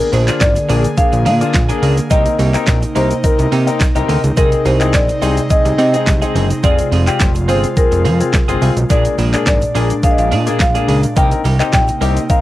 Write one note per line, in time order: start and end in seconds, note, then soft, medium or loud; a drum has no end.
0.00 2.09 D3 medium
0.00 4.33 A#3 medium
0.00 2.09 G#4 medium
0.00 0.14 A#4 loud
0.00 muted clean electric guitar stroke soft
0.12 0.30 A#1 loud
0.12 0.28 A#3 medium
0.12 0.27 D4 medium
0.12 0.26 G#4 medium
0.12 0.42 C5 medium
0.12 open hi-hat medium
0.12 shaker soft
0.12 shaker medium
0.27 0.50 A#3 medium
0.27 0.42 A#3 medium
0.27 0.51 D4 medium
0.27 0.41 D4 medium
0.27 0.51 F4 medium
0.27 0.41 G#4 medium
0.27 clap medium
0.27 closed hi-hat medium
0.27 shaker medium
0.40 0.59 G#1 loud
0.40 0.94 D5 loud
0.40 kick loud
0.40 snare medium
0.40 clap loud
0.40 closed hi-hat medium
0.40 shaker medium
0.56 muted clean electric guitar stroke soft
0.56 closed hi-hat medium
0.56 shaker medium
0.69 0.87 A#1 medium
0.69 0.88 A#3 medium
0.69 0.85 A#3 medium
0.69 0.84 D4 medium
0.69 0.86 D4 medium
0.69 0.86 G#4 medium
0.69 0.83 G#4 medium
0.69 open hi-hat medium
0.69 shaker medium
0.84 muted clean electric guitar stroke soft
0.84 closed hi-hat medium
0.84 shaker medium
0.97 1.21 A#3 medium
0.97 1.21 D4 medium
0.97 1.21 G#4 medium
0.97 1.24 F5 loud
0.97 muted clean electric guitar stroke soft
0.97 kick loud
0.97 closed hi-hat medium
0.97 shaker medium
1.12 1.28 A#1 medium
1.12 muted clean electric guitar stroke medium
1.12 closed hi-hat soft
1.12 shaker medium
1.25 1.44 A#2 loud
1.25 1.41 A#3 medium
1.25 1.40 D4 medium
1.25 1.39 G#4 loud
1.25 2.13 F5 loud
1.25 open hi-hat medium
1.25 shaker medium
1.40 1.55 A#3 medium
1.40 1.53 A#3 medium
1.40 1.56 D4 medium
1.40 1.53 D4 medium
1.40 1.56 F4 medium
1.40 1.54 G#4 medium
1.40 closed hi-hat medium
1.40 shaker medium
1.54 1.72 A#1 medium
1.54 kick loud
1.54 snare medium
1.54 clap loud
1.54 closed hi-hat medium
1.54 shaker medium
1.69 1.92 A#3 medium
1.69 1.81 A#3 medium
1.69 1.92 D4 medium
1.69 1.82 D4 medium
1.69 1.82 G#4 medium
1.69 1.92 G#4 medium
1.69 closed hi-hat medium
1.69 shaker soft
1.69 shaker medium
1.82 2.00 C#2 medium
1.82 2.01 A#3 medium
1.82 1.97 D4 loud
1.82 1.96 G#4 loud
1.82 open hi-hat medium
1.82 shaker medium
1.97 muted clean electric guitar stroke medium
1.97 closed hi-hat medium
1.97 shaker soft
1.97 shaker medium
2.10 2.28 C2 loud
2.10 8.86 C3 medium
2.10 2.29 A#3 medium
2.10 2.34 C4 medium
2.10 2.34 D#4 medium
2.10 2.25 D#4 medium
2.10 4.35 D#4 medium
2.10 2.24 G4 medium
2.10 2.34 A#4 medium
2.10 2.92 D#5 loud
2.10 kick loud
2.10 closed hi-hat medium
2.10 shaker medium
2.25 muted clean electric guitar stroke soft
2.25 closed hi-hat medium
2.25 shaker medium
2.39 2.57 C2 loud
2.39 2.54 A#3 medium
2.39 2.53 D#4 medium
2.39 2.53 G4 medium
2.39 open hi-hat medium
2.39 shaker soft
2.39 shaker medium
2.54 2.68 A#3 medium
2.54 2.77 C4 medium
2.54 2.77 D#4 medium
2.54 2.68 D#4 medium
2.54 2.67 G4 medium
2.54 2.77 A#4 medium
2.54 clap medium
2.54 closed hi-hat medium
2.54 shaker medium
2.67 2.85 A#1 loud
2.67 kick loud
2.67 snare loud
2.67 clap loud
2.67 closed hi-hat medium
2.67 shaker medium
2.82 muted clean electric guitar stroke soft
2.82 closed hi-hat medium
2.82 shaker medium
2.95 3.13 C2 medium
2.95 3.14 A#3 medium
2.95 3.12 C4 medium
2.95 3.12 D#4 medium
2.95 3.10 D#4 medium
2.95 3.09 G4 medium
2.95 3.12 A#4 medium
2.95 3.25 C5 medium
2.95 open hi-hat medium
2.95 shaker medium
3.10 muted clean electric guitar stroke soft
3.10 closed hi-hat medium
3.10 shaker medium
3.24 3.47 C4 medium
3.24 3.47 D#4 medium
3.24 3.47 A#4 medium
3.24 4.05 A#4 medium
3.24 muted clean electric guitar stroke medium
3.24 kick loud
3.24 closed hi-hat medium
3.24 shaker medium
3.39 3.47 C2 loud
3.39 muted clean electric guitar stroke soft
3.39 closed hi-hat medium
3.39 shaker soft
3.39 shaker medium
3.52 3.70 C3 loud
3.52 3.67 A#3 loud
3.52 3.66 D#4 loud
3.52 3.66 G4 loud
3.52 open hi-hat medium
3.52 shaker medium
3.67 3.79 A#3 medium
3.67 3.82 C4 medium
3.67 3.82 D#4 medium
3.67 3.80 D#4 medium
3.67 3.80 G4 medium
3.67 3.82 A#4 medium
3.67 closed hi-hat medium
3.67 shaker soft
3.67 shaker medium
3.80 kick loud
3.80 snare medium
3.80 clap loud
3.80 closed hi-hat medium
3.80 shaker medium
3.95 4.04 C2 medium
3.95 4.07 A#3 soft
3.95 4.18 C4 medium
3.95 4.18 D#4 medium
3.95 4.08 D#4 medium
3.95 4.09 G4 medium
3.95 4.18 A#4 loud
3.95 closed hi-hat medium
3.95 shaker soft
3.95 shaker medium
4.08 4.18 D2 medium
4.08 4.28 A#3 loud
4.08 4.23 D#4 medium
4.08 4.22 G4 loud
4.08 open hi-hat medium
4.08 shaker medium
4.23 4.32 C#2 medium
4.23 muted clean electric guitar stroke medium
4.23 closed hi-hat medium
4.23 shaker medium
4.23 shaker soft
4.37 4.55 C2 loud
4.37 11.13 G#3 medium
4.37 4.56 C4 medium
4.37 4.60 C4 medium
4.37 4.61 D#4 medium
4.37 4.52 D#4 medium
4.37 6.62 D#4 medium
4.37 4.61 G#4 medium
4.37 4.51 G#4 loud
4.37 4.67 A#4 loud
4.37 kick loud
4.37 closed hi-hat medium
4.37 shaker medium
4.52 muted clean electric guitar stroke medium
4.52 closed hi-hat medium
4.52 shaker medium
4.65 4.95 C2 loud
4.65 4.80 C4 medium
4.65 4.80 D#4 medium
4.65 4.79 G#4 medium
4.65 4.95 C5 medium
4.65 open hi-hat medium
4.65 shaker soft
4.65 shaker medium
4.80 5.03 C4 medium
4.80 4.95 C4 soft
4.80 5.03 D#4 medium
4.80 4.94 D#4 medium
4.80 4.94 G#4 medium
4.80 5.03 G#4 medium
4.80 clap medium
4.80 closed hi-hat medium
4.80 shaker medium
4.93 5.11 A#1 loud
4.93 5.52 D5 loud
4.93 kick loud
4.93 snare medium
4.93 clap loud
4.93 closed hi-hat medium
4.93 shaker medium
5.08 muted clean electric guitar stroke medium
5.08 closed hi-hat medium
5.08 shaker medium
5.22 5.40 C2 medium
5.22 5.41 C4 medium
5.22 5.38 C4 medium
5.22 5.38 D#4 medium
5.22 5.37 D#4 medium
5.22 5.38 G#4 medium
5.22 5.36 G#4 medium
5.22 open hi-hat medium
5.22 shaker medium
5.37 muted clean electric guitar stroke soft
5.37 closed hi-hat medium
5.37 shaker medium
5.50 5.74 C4 medium
5.50 5.74 D#4 medium
5.50 5.74 G#4 medium
5.50 5.63 D#5 loud
5.50 muted clean electric guitar stroke soft
5.50 kick loud
5.50 closed hi-hat medium
5.50 shaker medium
5.65 5.73 C2 loud
5.65 muted clean electric guitar stroke soft
5.65 closed hi-hat medium
5.65 shaker medium
5.78 5.96 C3 loud
5.78 5.94 C4 medium
5.78 5.93 D#4 medium
5.78 5.92 G#4 medium
5.78 6.66 D#5 loud
5.78 open hi-hat medium
5.78 shaker medium
5.93 6.08 C4 medium
5.93 6.05 C4 soft
5.93 6.08 D#4 medium
5.93 6.06 D#4 medium
5.93 6.07 G#4 medium
5.93 6.09 G#4 medium
5.93 closed hi-hat medium
5.93 shaker medium
6.07 6.25 C2 medium
6.07 kick loud
6.07 snare medium
6.07 clap loud
6.07 closed hi-hat medium
6.07 shaker medium
6.21 6.45 C4 medium
6.21 6.34 C4 medium
6.21 6.45 D#4 medium
6.21 6.34 D#4 medium
6.21 6.35 G#4 medium
6.21 6.45 G#4 medium
6.21 closed hi-hat medium
6.21 shaker soft
6.21 shaker medium
6.35 6.53 F#1 loud
6.35 6.54 C4 medium
6.35 6.50 D#4 medium
6.35 6.49 G#4 medium
6.35 open hi-hat medium
6.35 shaker medium
6.50 muted clean electric guitar stroke soft
6.50 closed hi-hat medium
6.50 shaker soft
6.50 shaker medium
6.63 6.81 F1 loud
6.63 6.82 C4 medium
6.63 6.87 C4 medium
6.63 6.87 F4 medium
6.63 8.88 F4 medium
6.63 6.78 F4 loud
6.63 6.87 G#4 medium
6.63 6.77 G#4 loud
6.63 7.51 D5 loud
6.63 kick loud
6.63 closed hi-hat medium
6.63 shaker medium
6.78 muted clean electric guitar stroke medium
6.78 closed hi-hat medium
6.78 shaker medium
6.91 7.09 F1 loud
6.91 7.07 C4 medium
6.91 7.06 F4 medium
6.91 7.05 G#4 medium
6.91 open hi-hat medium
6.91 shaker medium
7.06 7.30 C4 medium
7.06 7.21 C4 medium
7.06 7.21 F4 medium
7.06 7.30 F4 medium
7.06 7.30 G4 medium
7.06 7.20 G#4 medium
7.06 clap medium
7.06 closed hi-hat medium
7.06 shaker medium
7.20 7.50 F1 loud
7.20 kick loud
7.20 snare medium
7.20 clap loud
7.20 closed hi-hat medium
7.20 shaker medium
7.35 muted clean electric guitar stroke soft
7.35 closed hi-hat medium
7.35 shaker medium
7.48 7.66 G1 medium
7.48 7.67 C4 medium
7.48 7.65 C4 medium
7.48 7.65 F4 medium
7.48 7.63 F4 medium
7.48 7.65 G#4 medium
7.48 7.62 G#4 medium
7.48 7.78 C5 medium
7.48 open hi-hat medium
7.48 shaker medium
7.63 muted clean electric guitar stroke medium
7.63 closed hi-hat medium
7.63 shaker medium
7.77 8.00 C4 medium
7.77 8.00 F4 medium
7.77 8.00 G#4 medium
7.77 8.58 A#4 medium
7.77 kick loud
7.77 closed hi-hat medium
7.77 shaker medium
7.92 8.07 F1 loud
7.92 muted clean electric guitar stroke soft
7.92 closed hi-hat soft
7.92 shaker medium
7.92 shaker soft
8.05 8.23 F2 loud
8.05 8.24 C4 medium
8.05 8.20 F4 medium
8.05 8.19 G#4 loud
8.05 open hi-hat medium
8.05 shaker medium
8.05 shaker soft
8.20 8.35 C4 medium
8.20 8.35 F4 medium
8.20 8.35 G#4 medium
8.20 muted clean electric guitar stroke soft
8.20 closed hi-hat medium
8.20 shaker medium
8.33 muted clean electric guitar stroke soft
8.33 kick loud
8.33 snare medium
8.33 clap loud
8.33 closed hi-hat medium
8.33 shaker medium
8.48 8.57 G1 medium
8.48 8.71 C4 medium
8.48 8.60 C4 medium
8.48 8.71 F4 medium
8.48 8.61 F4 medium
8.48 8.62 G#4 medium
8.48 8.71 G#4 loud
8.48 closed hi-hat medium
8.48 shaker soft
8.48 shaker medium
8.62 8.71 C2 medium
8.62 8.81 C4 medium
8.62 8.76 F4 medium
8.62 8.75 G#4 loud
8.62 open hi-hat medium
8.62 shaker medium
8.76 8.85 B1 medium
8.76 muted clean electric guitar stroke soft
8.76 closed hi-hat medium
8.76 shaker soft
8.76 shaker medium
8.90 9.08 A#1 loud
8.90 11.14 A#2 medium
8.90 9.09 A#3 medium
8.90 9.13 A#3 medium
8.90 11.14 D4 medium
8.90 9.13 D4 medium
8.90 9.05 D4 loud
8.90 9.14 G#4 medium
8.90 9.04 G#4 medium
8.90 9.46 D5 medium
8.90 kick loud
8.90 closed hi-hat medium
8.90 shaker medium
9.05 muted clean electric guitar stroke soft
9.05 closed hi-hat medium
9.05 shaker medium
9.18 9.36 A#1 loud
9.18 9.33 A#3 medium
9.18 9.33 D4 medium
9.18 9.32 G#4 medium
9.18 open hi-hat medium
9.18 shaker soft
9.18 shaker medium
9.33 9.56 A#3 medium
9.33 9.48 A#3 medium
9.33 9.56 D4 medium
9.33 9.47 D4 medium
9.33 9.47 G#4 medium
9.33 9.56 G#4 medium
9.33 clap medium
9.33 closed hi-hat medium
9.33 shaker medium
9.46 9.64 G#1 loud
9.46 10.05 D5 medium
9.46 kick loud
9.46 snare medium
9.46 clap loud
9.46 closed hi-hat medium
9.46 shaker medium
9.61 muted clean electric guitar stroke soft
9.61 closed hi-hat medium
9.61 shaker medium
9.75 9.93 A#1 medium
9.75 9.94 A#3 medium
9.75 9.91 A#3 medium
9.75 9.91 D4 medium
9.75 9.90 D4 medium
9.75 9.91 G#4 medium
9.75 9.89 G#4 loud
9.75 open hi-hat medium
9.75 shaker medium
9.90 muted clean electric guitar stroke soft
9.90 closed hi-hat medium
9.90 shaker medium
10.03 10.27 A#3 medium
10.03 10.27 D4 medium
10.03 10.27 G#4 medium
10.03 10.11 F5 loud
10.03 muted clean electric guitar stroke soft
10.03 kick loud
10.03 closed hi-hat medium
10.03 shaker medium
10.11 10.18 D#5 medium
10.18 10.33 A#1 loud
10.18 10.57 F5 loud
10.18 muted clean electric guitar stroke soft
10.18 closed hi-hat soft
10.18 shaker soft
10.18 shaker medium
10.31 10.49 A#2 loud
10.31 10.47 A#3 medium
10.31 10.46 D4 medium
10.31 10.45 G#4 medium
10.31 open hi-hat medium
10.31 shaker medium
10.46 10.61 A#3 medium
10.46 10.59 A#3 medium
10.46 10.61 D4 medium
10.46 10.59 D4 medium
10.46 10.60 G#4 medium
10.46 10.61 G#4 medium
10.46 closed hi-hat medium
10.46 shaker soft
10.46 shaker medium
10.59 10.78 A#1 medium
10.59 11.19 F5 loud
10.59 muted clean electric guitar stroke soft
10.59 kick loud
10.59 snare medium
10.59 clap loud
10.59 closed hi-hat medium
10.59 shaker medium
10.75 10.97 A#3 medium
10.75 10.87 A#3 medium
10.75 10.98 D4 medium
10.75 10.88 D4 medium
10.75 10.88 G#4 medium
10.75 10.98 G#4 medium
10.75 closed hi-hat medium
10.75 shaker soft
10.75 shaker medium
10.88 11.06 C#2 loud
10.88 11.07 A#3 medium
10.88 11.03 D4 medium
10.88 11.02 G#4 medium
10.88 open hi-hat medium
10.88 shaker medium
11.03 muted clean electric guitar stroke medium
11.03 closed hi-hat medium
11.03 shaker medium
11.16 11.34 C2 loud
11.16 12.41 C3 medium
11.16 11.35 A#3 medium
11.16 12.41 A#3 medium
11.16 11.40 C4 medium
11.16 11.40 D#4 medium
11.16 12.41 D#4 medium
11.16 11.31 D#4 medium
11.16 11.30 G4 loud
11.16 11.40 A#4 medium
11.16 11.72 G5 loud
11.16 kick loud
11.16 closed hi-hat medium
11.16 shaker medium
11.31 muted clean electric guitar stroke soft
11.31 closed hi-hat medium
11.31 shaker medium
11.44 11.62 C2 loud
11.44 11.60 A#3 medium
11.44 11.59 D#4 medium
11.44 11.58 G4 medium
11.44 open hi-hat medium
11.44 shaker soft
11.44 shaker medium
11.59 11.74 A#3 medium
11.59 11.82 C4 medium
11.59 11.82 D#4 medium
11.59 11.74 D#4 medium
11.59 11.73 G4 medium
11.59 11.83 G4 medium
11.59 clap medium
11.59 closed hi-hat medium
11.59 shaker medium
11.73 11.91 A#1 loud
11.73 12.32 G5 loud
11.73 kick loud
11.73 snare medium
11.73 clap loud
11.73 closed hi-hat medium
11.73 shaker medium
11.88 muted clean electric guitar stroke medium
11.88 closed hi-hat medium
11.88 shaker medium
12.01 12.19 C2 medium
12.01 12.20 A#3 medium
12.01 12.17 C4 medium
12.01 12.18 D#4 medium
12.01 12.16 D#4 loud
12.01 12.18 G4 medium
12.01 12.15 G4 loud
12.01 open hi-hat medium
12.01 shaker medium
12.16 muted clean electric guitar stroke soft
12.16 closed hi-hat medium
12.16 shaker medium
12.30 12.41 C4 medium
12.30 12.41 D#4 medium
12.30 12.41 A#4 medium
12.30 12.41 F5 loud
12.30 muted clean electric guitar stroke soft
12.30 kick loud
12.30 closed hi-hat medium
12.30 shaker medium